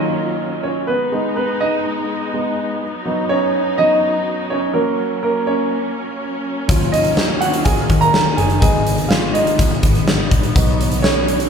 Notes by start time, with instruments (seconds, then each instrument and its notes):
Already playing: string section D#3 F#3 A#3 C#4 F4, grand piano F#3 C#4 D#4 F4 C#5 D#5
0.63 grand piano C#4 C#5
0.87 string section G#3 B3 D#4, grand piano B3 B4
1.12 grand piano G#3 B3 D#4
1.36 grand piano B3 B4
1.61 grand piano D#4 D#5
2.34 grand piano G#3 B3 D#4
2.81 string section F#3 D#4
3.05 grand piano F#3 B3 D#4
3.29 grand piano C#4 C#5
3.78 grand piano F#3 B3 D#4 D#5
4.50 grand piano C#4 C#5
4.73 grand piano F#3 A#3 C#4 A#4, string section A#3 C#4
5.23 grand piano A#3 A#4
5.47 grand piano C#4 C#5
6.68 picked electric bass D#2, string section D#3 F#3 A#3 F4, grand piano F#3 C#4 F4, kick, closed hi-hat
6.81 closed hi-hat
6.92 grand piano D#4 D#5, closed hi-hat
7.04 closed hi-hat
7.17 snare
7.41 grand piano F#4 F#5, closed hi-hat
7.54 closed hi-hat
7.65 grand piano G#4 G#5, kick, closed hi-hat
7.90 picked electric bass D#2, kick, closed hi-hat
8.01 grand piano A#4 A#5, closed hi-hat
8.14 snare
8.37 picked electric bass F#1, grand piano G#4 G#5, closed hi-hat
8.50 closed hi-hat
8.60 picked electric bass G#1, grand piano G#3 B3 D#4 G#4 G#5, string section G#3 B3, kick, closed hi-hat
8.87 closed hi-hat
8.98 closed hi-hat
9.09 grand piano F4 F5, snare
9.33 grand piano D#4 D#5, closed hi-hat
9.47 closed hi-hat
9.59 kick, closed hi-hat
9.83 picked electric bass G#1, kick, closed hi-hat
9.95 closed hi-hat
10.08 snare
10.31 picked electric bass A#1, kick, closed hi-hat
10.43 closed hi-hat
10.55 picked electric bass B1, grand piano F#3 B3 D#4, string section F#3, kick, closed hi-hat
10.81 closed hi-hat
10.91 closed hi-hat
11.02 grand piano C#4 C#5, snare
11.28 closed hi-hat
11.40 closed hi-hat